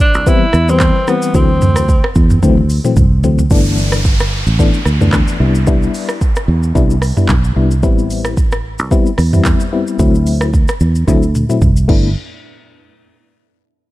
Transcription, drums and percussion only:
0.00 kick loud
0.14 shaker medium
0.27 kick loud
0.27 shaker medium
0.53 cross-stick medium
0.53 shaker medium
0.69 shaker medium
0.80 kick loud
0.80 cross-stick medium
0.80 clap medium
0.80 shaker medium
1.08 cross-stick medium
1.08 shaker medium
1.22 shaker medium
1.34 kick loud
1.34 shaker medium
1.62 mid tom loud
1.62 shaker medium
1.76 cross-stick loud
1.76 shaker medium
1.89 kick loud
1.89 shaker medium
2.04 cross-stick loud
2.15 kick loud
2.15 shaker medium
2.30 mid tom loud
2.30 shaker medium
2.43 kick loud
2.43 high tom medium
2.43 shaker medium
2.57 high tom medium
2.70 open hi-hat medium
2.70 shaker medium
2.85 mid tom medium
2.85 shaker medium
2.96 kick loud
2.96 mid tom medium
2.96 shaker medium
3.24 floor tom loud
3.24 shaker medium
3.39 floor tom loud
3.39 shaker medium
3.51 kick loud
3.51 shaker medium
3.66 shaker soft
3.78 shaker medium
3.92 cross-stick loud
3.92 shaker medium
4.05 kick loud
4.05 shaker medium
4.20 cross-stick loud
4.20 shaker medium
4.47 shaker soft
4.59 kick loud
4.59 shaker medium
4.74 shaker soft
4.85 cross-stick medium
4.85 shaker medium
5.01 mid tom medium
5.01 shaker medium
5.13 kick loud
5.13 cross-stick medium
5.13 clap medium
5.13 shaker medium
5.28 shaker medium
5.55 shaker soft
5.67 kick loud
5.67 shaker medium
5.83 shaker soft
5.94 open hi-hat medium
5.94 shaker medium
6.09 cross-stick loud
6.09 shaker medium
6.21 kick medium
6.21 shaker medium
6.36 cross-stick medium
6.36 shaker medium
6.63 shaker soft
6.75 kick loud
6.75 shaker medium
6.90 shaker soft
7.02 cross-stick medium
7.02 open hi-hat medium
7.02 shaker medium
7.17 mid tom loud
7.17 shaker medium
7.29 kick medium
7.29 cross-stick medium
7.29 clap medium
7.29 shaker medium
7.44 shaker medium
7.71 shaker medium
7.83 kick loud
7.83 shaker medium
7.99 shaker soft
8.10 open hi-hat medium
8.10 shaker medium
8.25 cross-stick loud
8.25 shaker medium
8.37 kick loud
8.37 shaker medium
8.52 cross-stick loud
8.52 shaker medium
8.79 shaker soft
8.91 kick loud
8.91 shaker medium
9.06 shaker soft
9.18 cross-stick medium
9.18 open hi-hat medium
9.18 shaker medium
9.33 mid tom loud
9.33 shaker medium
9.45 kick medium
9.45 cross-stick medium
9.45 clap medium
9.45 shaker medium
9.60 shaker medium
9.87 shaker soft
9.99 kick loud
9.99 shaker medium
10.15 shaker soft
10.27 open hi-hat medium
10.27 shaker medium
10.41 cross-stick loud
10.41 shaker medium
10.54 kick medium
10.54 shaker medium
10.68 cross-stick loud
10.68 shaker medium
10.80 shaker medium
10.95 shaker soft
11.08 kick loud
11.08 high tom medium
11.08 shaker medium
11.23 shaker soft
11.35 mid tom medium
11.35 shaker medium
11.50 mid tom medium
11.50 shaker medium
11.62 kick loud
11.62 mid tom medium
11.62 shaker medium
11.77 shaker medium
11.89 kick loud
11.89 crash medium

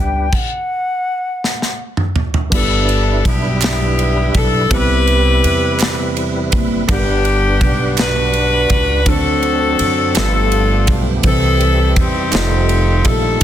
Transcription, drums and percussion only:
0.32 kick medium
0.32 crash medium
1.44 snare soft
1.62 snare soft
1.97 mid tom medium
2.16 floor tom medium
2.34 floor tom medium
2.52 kick loud
2.52 crash medium
2.89 ride soft
3.25 kick loud
3.25 ride medium
3.61 snare loud
3.61 clap loud
3.61 ride medium
3.99 ride soft
4.34 kick medium
4.34 ride medium
4.71 kick loud
4.71 ride medium
5.07 ride soft
5.44 ride medium
5.79 snare loud
5.79 clap medium
5.79 ride medium
6.17 ride soft
6.52 kick medium
6.52 ride medium
6.89 kick loud
6.89 ride medium
7.25 ride soft
7.61 kick loud
7.61 ride medium
7.97 snare loud
7.97 clap medium
7.97 ride medium
8.33 ride soft
8.70 kick medium
8.70 ride medium
9.06 kick loud
9.06 ride medium
9.43 ride soft
9.79 ride medium
10.15 snare loud
10.15 clap medium
10.15 ride medium
10.52 ride soft
10.87 kick medium
10.87 ride medium
11.23 kick loud
11.23 ride medium
11.61 ride soft
11.96 kick loud
11.96 ride medium
12.32 snare loud
12.32 clap medium
12.32 ride medium
12.69 ride soft
13.05 kick medium
13.05 ride medium

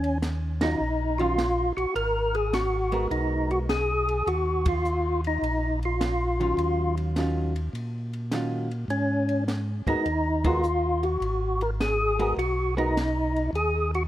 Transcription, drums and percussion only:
0.04 ride soft
0.22 snare medium
0.22 hi-hat pedal medium
0.22 ride medium
0.61 snare medium
0.61 ride medium
1.19 ride soft
1.38 snare medium
1.38 hi-hat pedal medium
1.38 ride medium
1.78 ride soft
1.96 ride medium
2.35 ride soft
2.53 snare medium
2.53 hi-hat pedal medium
2.53 ride medium
2.92 ride soft
3.11 ride soft
3.51 ride soft
3.69 snare medium
3.69 hi-hat pedal medium
3.69 ride medium
4.09 ride soft
4.27 ride medium
4.66 kick medium
4.66 ride medium
4.85 hi-hat pedal medium
5.24 ride soft
5.43 ride medium
5.83 ride soft
6.01 snare medium
6.01 hi-hat pedal medium
6.01 ride medium
6.41 ride soft
6.58 ride medium
6.97 ride soft
7.16 snare medium
7.16 hi-hat pedal medium
7.16 ride medium
7.56 ride soft
7.75 ride medium
8.13 ride soft
8.31 snare medium
8.31 hi-hat pedal medium
8.31 ride medium
8.71 ride soft
8.90 ride medium
9.29 ride soft
9.48 snare medium
9.48 hi-hat pedal soft
9.48 ride medium
9.87 kick medium
9.87 ride soft
10.06 ride medium
10.44 kick medium
10.44 ride medium
10.63 hi-hat pedal medium
11.03 ride soft
11.22 ride medium
11.61 ride soft
11.80 snare medium
11.80 hi-hat pedal medium
11.80 ride medium
12.20 ride soft
12.39 ride medium
12.78 ride soft
12.97 snare medium
12.97 hi-hat pedal medium
12.97 ride medium
13.36 ride soft
13.55 ride medium
13.94 ride soft

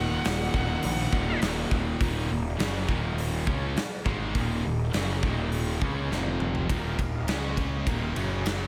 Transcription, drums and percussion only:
0.25 snare loud
0.25 open hi-hat medium
0.54 kick medium
0.83 open hi-hat medium
1.13 kick medium
1.42 snare loud
1.42 open hi-hat medium
1.71 kick medium
2.01 kick loud
2.01 open hi-hat medium
2.59 snare loud
2.59 open hi-hat medium
2.89 kick loud
3.18 open hi-hat medium
3.47 kick loud
3.77 snare loud
3.77 open hi-hat medium
4.06 kick loud
4.35 kick loud
4.35 open hi-hat medium
4.93 snare loud
4.93 open hi-hat medium
5.23 kick loud
5.52 open hi-hat medium
5.82 kick loud
6.12 snare medium
6.26 high tom medium
6.40 mid tom medium
6.55 floor tom medium
6.70 kick loud
6.70 ride loud
6.99 kick medium
6.99 ride medium
7.28 snare loud
7.28 ride medium
7.57 kick medium
7.57 ride medium
7.87 kick loud
7.87 ride medium
8.16 ride medium
8.46 snare loud
8.46 ride medium

